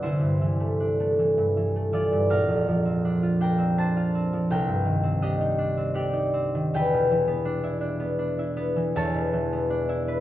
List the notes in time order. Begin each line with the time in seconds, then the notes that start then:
Already playing: D4 G4 D5
0.02 C2 E4 C5
0.21 G2
0.41 E3
0.60 A3
0.80 D4
1.00 A3
1.19 E3
1.38 G2
1.57 E3
1.76 A3
1.93 E3 F4 D5
2.12 G2
2.30 A#1 A#4 F5
2.48 F2
2.68 F3
2.85 C4
3.05 D4
3.23 F4
3.40 D4 A#4 G5
3.58 C4
3.78 D4 C5 A5
3.97 F4
4.15 C4
4.33 F3
4.50 C2 A#4 G5
4.68 G2
4.85 D#3
5.03 C4
5.22 D4 G4 D#5
5.41 D#4
5.58 D4
5.77 C4
5.94 D4 G4 D5
6.13 D#4
6.34 C4
6.55 D#3
6.74 E2 B4 G5
6.94 B2
7.11 E3
7.28 B3
7.45 D4
7.64 E4
7.81 D4
8.00 B3
8.19 D4
8.39 E4
8.57 B3
8.76 E3
8.96 E2 C#5 A5
9.14 B2
9.33 E3
9.53 B3
9.70 D4
9.89 E4
10.08 B4